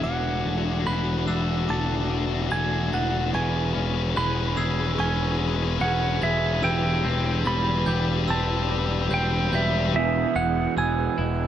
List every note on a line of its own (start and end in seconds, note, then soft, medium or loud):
0.00 9.90 E3 medium
0.00 0.10 D4 medium
0.00 9.90 E4 medium
0.00 3.30 F#4 medium
0.00 0.11 F#4 medium
0.00 3.30 D5 medium
0.00 0.89 F#5 medium
0.00 0.86 D6 medium
0.04 0.44 E1 medium
0.04 0.86 E3 medium
0.11 0.18 D4 soft
0.11 0.18 F#4 medium
0.19 0.26 D4 medium
0.19 0.26 F#4 medium
0.27 0.34 D4 soft
0.27 0.34 F#4 medium
0.35 0.41 D4 medium
0.35 0.42 F#4 medium
0.42 1.68 A3 medium
0.42 0.49 D4 soft
0.42 0.49 F#4 medium
0.46 0.86 E1 medium
0.46 0.56 D4 medium
0.46 0.57 F#4 medium
0.57 0.64 D4 soft
0.57 0.65 F#4 medium
0.65 0.72 D4 medium
0.65 0.72 F#4 medium
0.72 0.78 D4 medium
0.72 0.80 F#4 medium
0.79 0.87 D4 medium
0.79 0.88 F#4 medium
0.87 1.27 E1 medium
0.87 2.09 E3 medium
0.87 0.95 D4 medium
0.87 0.95 F#4 medium
0.87 1.65 B5 medium
0.87 1.28 F#6 medium
0.95 1.02 D4 medium
0.95 1.03 F#4 medium
1.03 1.10 D4 medium
1.03 1.11 F#4 medium
1.10 1.18 D4 medium
1.10 1.18 F#4 medium
1.19 1.26 D4 medium
1.19 1.26 F#4 medium
1.26 1.68 E1 medium
1.26 1.33 D4 medium
1.26 3.34 D4 medium
1.26 1.34 F#4 medium
1.26 1.69 E6 medium
1.33 1.41 D4 medium
1.33 1.42 F#4 medium
1.41 1.49 D4 medium
1.41 1.50 F#4 medium
1.49 1.56 D4 medium
1.49 1.57 F#4 medium
1.57 1.64 D4 medium
1.57 1.65 F#4 medium
1.66 2.49 E1 medium
1.66 2.50 A3 medium
1.66 1.72 D4 medium
1.66 1.73 F#4 medium
1.66 2.51 D6 medium
1.70 1.79 D4 medium
1.70 1.80 F#4 medium
1.70 2.51 A5 medium
1.80 1.87 D4 medium
1.80 1.87 F#4 medium
1.87 1.95 D4 medium
1.87 1.95 F#4 medium
1.95 2.02 D4 medium
1.95 2.03 F#4 medium
2.03 2.10 D4 medium
2.03 2.10 F#4 medium
2.10 2.92 E3 medium
2.10 2.18 D4 medium
2.10 2.18 F#4 medium
2.19 2.26 D4 medium
2.19 2.26 F#4 medium
2.26 2.33 D4 medium
2.26 2.34 F#4 medium
2.33 2.41 D4 medium
2.33 2.42 F#4 medium
2.42 2.48 D4 medium
2.42 2.48 F#4 medium
2.49 2.92 E1 medium
2.49 3.34 A3 medium
2.49 2.56 D4 medium
2.49 2.56 F#4 medium
2.49 2.93 G#5 medium
2.49 2.92 A7 medium
2.56 2.64 D4 medium
2.56 2.64 F#4 medium
2.65 2.71 D4 medium
2.65 2.73 F#4 medium
2.71 2.79 D4 medium
2.71 2.79 F#4 medium
2.79 2.87 D4 medium
2.79 2.87 F#4 medium
2.88 2.95 D4 medium
2.88 2.95 F#4 medium
2.93 3.33 E1 medium
2.93 3.33 E3 medium
2.93 3.03 D4 medium
2.93 3.03 F#4 medium
2.93 3.34 F#5 medium
2.93 3.34 A6 medium
3.04 3.09 D4 soft
3.04 3.11 F#4 medium
3.10 3.17 D4 medium
3.10 3.18 F#4 medium
3.18 3.25 D4 medium
3.18 3.25 F#4 medium
3.25 3.33 D4 medium
3.25 3.33 F#4 medium
3.34 3.74 E1 loud
3.34 6.62 E3 medium
3.34 6.60 G#4 medium
3.34 3.41 G#4 medium
3.34 3.41 B4 medium
3.34 6.60 C#5 medium
3.34 4.17 G#5 loud
3.34 4.16 C#6 medium
3.41 3.49 G#4 medium
3.41 3.49 B4 medium
3.49 3.56 G#4 medium
3.49 3.57 B4 medium
3.56 3.64 G#4 medium
3.56 3.64 B4 medium
3.64 3.72 G#4 medium
3.64 3.72 B4 medium
3.72 4.15 E1 medium
3.72 4.97 C#4 medium
3.72 3.80 G#4 medium
3.72 3.80 B4 medium
3.80 3.87 G#4 medium
3.80 3.87 B4 medium
3.88 3.95 G#4 medium
3.88 3.94 B4 medium
3.95 4.02 G#4 medium
3.95 4.02 B4 medium
4.02 4.10 G#4 medium
4.02 4.10 B4 medium
4.10 4.17 G#4 medium
4.10 4.18 B4 medium
4.16 4.56 E1 medium
4.16 5.38 G#3 medium
4.16 4.25 G#4 medium
4.16 4.25 B4 medium
4.16 5.00 B5 loud
4.16 4.57 F#6 medium
4.26 4.33 G#4 medium
4.26 4.32 B4 medium
4.32 4.41 G#4 medium
4.32 4.40 B4 medium
4.41 4.48 G#4 medium
4.41 4.48 B4 medium
4.48 4.56 G#4 medium
4.48 4.56 B4 medium
4.56 4.97 E1 medium
4.56 4.62 G#4 medium
4.56 6.64 G#4 medium
4.56 4.64 B4 medium
4.56 4.98 E6 medium
4.63 4.70 G#4 medium
4.63 4.71 B4 medium
4.71 4.79 G#4 medium
4.71 4.79 B4 medium
4.80 4.86 G#4 medium
4.80 4.88 B4 medium
4.86 4.94 G#4 medium
4.86 4.93 B4 medium
4.94 5.02 G#4 medium
4.94 5.00 B4 medium
4.98 5.78 E1 medium
4.98 5.79 C#4 medium
4.98 5.08 B4 medium
4.98 5.84 G#5 medium
4.98 5.81 C#6 medium
5.02 5.09 G#4 medium
5.09 5.17 G#4 medium
5.09 5.17 B4 medium
5.17 5.25 G#4 medium
5.17 5.24 B4 medium
5.24 5.33 G#4 medium
5.24 5.32 B4 medium
5.32 5.41 G#4 medium
5.32 5.38 B4 medium
5.39 6.20 G#3 medium
5.39 5.48 G#4 medium
5.39 5.46 B4 medium
5.48 5.56 G#4 medium
5.48 5.55 B4 medium
5.56 5.63 G#4 medium
5.56 5.63 B4 medium
5.63 5.71 G#4 medium
5.63 5.70 B4 medium
5.71 5.78 G#4 medium
5.71 5.78 B4 medium
5.78 6.21 E1 medium
5.78 6.63 C#4 medium
5.78 5.86 G#4 medium
5.78 5.85 B4 medium
5.78 6.20 F#5 medium
5.78 6.20 G#6 medium
5.85 5.94 G#4 medium
5.85 5.93 B4 medium
5.93 6.02 G#4 medium
5.93 6.01 B4 medium
6.01 6.10 G#4 medium
6.01 6.08 B4 medium
6.08 6.17 G#4 medium
6.08 6.15 B4 medium
6.16 6.25 G#4 medium
6.16 6.23 B4 medium
6.22 6.62 E1 medium
6.22 6.63 G#3 medium
6.22 6.31 B4 medium
6.22 6.61 E5 medium
6.22 6.63 G#6 medium
6.26 6.33 G#4 medium
6.31 6.41 G#4 medium
6.31 6.39 B4 medium
6.39 6.48 G#4 medium
6.39 6.47 B4 medium
6.47 6.55 G#4 medium
6.47 6.53 B4 medium
6.54 6.62 G#4 medium
6.54 6.61 B4 medium
6.63 7.03 E1 medium
6.63 8.70 E3 medium
6.63 6.69 G4 medium
6.63 6.71 B4 medium
6.63 9.91 B4 medium
6.63 9.91 D5 medium
6.63 7.42 G5 loud
6.63 7.46 E6 medium
6.70 6.77 G4 medium
6.70 6.77 B4 medium
6.78 6.86 G4 medium
6.78 6.85 B4 medium
6.86 6.92 G4 soft
6.86 6.93 B4 medium
6.93 7.00 G4 medium
6.93 7.01 B4 medium
7.01 8.27 C4 medium
7.01 7.08 G4 medium
7.01 7.09 B4 medium
7.05 7.45 E1 medium
7.05 7.16 G4 medium
7.05 7.17 B4 medium
7.16 7.23 G4 medium
7.16 7.25 B4 medium
7.24 7.32 G4 medium
7.24 7.31 B4 medium
7.31 7.39 G4 medium
7.31 7.39 B4 medium
7.40 7.46 G4 medium
7.40 7.47 B4 medium
7.45 7.86 E1 medium
7.45 8.69 G3 medium
7.45 7.54 G4 medium
7.45 7.55 B4 medium
7.45 8.30 B5 loud
7.45 7.87 A6 medium
7.55 7.62 G4 medium
7.55 7.63 B4 medium
7.63 7.70 G4 medium
7.63 7.70 B4 medium
7.70 7.77 G4 medium
7.70 7.78 B4 medium
7.78 7.86 G4 medium
7.78 7.86 B4 medium
7.86 8.27 E1 loud
7.86 7.93 G4 medium
7.86 9.94 G4 medium
7.86 7.93 B4 medium
7.86 8.28 G6 medium
7.93 8.01 G4 medium
7.93 8.00 B4 medium
8.00 8.09 G4 medium
8.00 8.08 B4 medium
8.09 8.17 G4 medium
8.09 8.16 B4 medium
8.16 8.24 G4 medium
8.16 8.24 B4 medium
8.24 9.10 C4 medium
8.24 8.31 G4 medium
8.24 8.32 B4 medium
8.24 9.11 E6 medium
8.29 9.08 E1 medium
8.29 8.39 G4 medium
8.29 8.40 B4 medium
8.29 9.15 A5 medium
8.40 8.47 G4 medium
8.40 8.48 B4 medium
8.47 8.55 G4 medium
8.47 8.56 B4 medium
8.56 8.63 G4 medium
8.56 8.62 B4 medium
8.63 8.69 G4 medium
8.63 8.70 B4 medium
8.70 9.51 G3 medium
8.70 8.77 G4 medium
8.70 8.78 B4 medium
8.78 8.86 G4 medium
8.78 8.86 B4 medium
8.86 8.94 G4 medium
8.86 8.94 B4 medium
8.94 9.01 G4 medium
8.94 9.01 B4 medium
9.02 9.08 G4 medium
9.02 9.08 B4 medium
9.08 9.51 E1 medium
9.08 9.94 C4 medium
9.08 9.16 G4 medium
9.08 9.16 B4 medium
9.08 9.52 G6 medium
9.14 9.25 G4 medium
9.14 9.23 B4 medium
9.14 9.51 G5 medium
9.24 9.33 G4 medium
9.24 9.32 B4 medium
9.32 9.39 G4 medium
9.32 9.39 B4 medium
9.39 9.47 G4 medium
9.39 9.47 B4 medium
9.48 9.54 G4 soft
9.48 9.54 B4 medium
9.53 9.93 E1 medium
9.53 9.94 G3 medium
9.53 9.62 G4 medium
9.53 9.62 B4 medium
9.53 9.93 E5 medium
9.53 9.94 G6 medium
9.62 9.69 G4 soft
9.62 9.70 B4 medium
9.70 9.77 G4 medium
9.70 9.78 B4 medium
9.79 9.85 G4 soft
9.79 9.85 B4 medium
9.86 9.93 G4 medium
9.86 9.93 B4 medium
9.93 10.25 E1 loud
9.93 11.47 E2 medium
9.93 11.47 B2 loud
9.93 11.47 E3 medium
9.93 11.47 B3 medium
9.93 11.47 G#4 medium
9.93 11.47 E5 medium
9.93 10.38 E5 medium
10.35 10.66 E1 loud
10.35 11.47 G#3 medium
10.35 10.74 F#5 loud
10.35 10.77 F#6 medium
10.77 11.07 E1 medium
10.77 11.47 B3 medium
10.77 11.47 G#5 loud
10.77 11.47 E6 medium
11.18 11.47 E1 medium
11.18 11.47 E4 medium